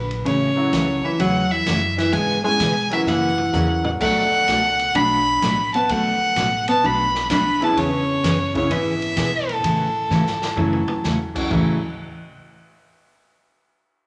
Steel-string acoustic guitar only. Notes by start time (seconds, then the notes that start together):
0.26 C#3 E3 A3 C#4 F#4
0.72 C#3 E3 A3 C#4 F#4
1.19 C#3 E3 A3 C#4 F#4
1.66 C#3 E3 A3 C#4 F#4
2.13 C#3 E3 B3 C#4 G#4
2.60 C#3 E3 B3 C#4 G#4
3.07 C#3 E3 A#3 C#4 F#4
3.55 C#3 E3 A#3 C#4 F#4
4.01 B2 F#3 A3 D4 F#4
4.48 B2 F#3 A3 D4 F#4
4.95 B2 F#3 A3 D4 F#4
5.42 B2 F#3 A3 D4 F#4
5.89 B2 F#3 A3 D4 F#4
6.36 B2 F#3 A3 D4 F#4
6.84 B2 F#3 A3 D4 F#4
7.31 B2 F#3 A3 D4 F#4
7.77 E3 B3 C#4 G#4
8.23 E3 B3 C#4 G#4
8.69 E3 B3 C#4 G#4
9.16 E3 B3 C#4 G#4
9.63 C#3 E3 A3 C#4 F#4
10.10 C#3 E3 A3 C#4 F#4
10.57 C#3 E3 A3 C#4 F#4
11.04 C#3 E3 A3 C#4 F#4
11.51 A2 C#3 E3 A3 C#4 F#4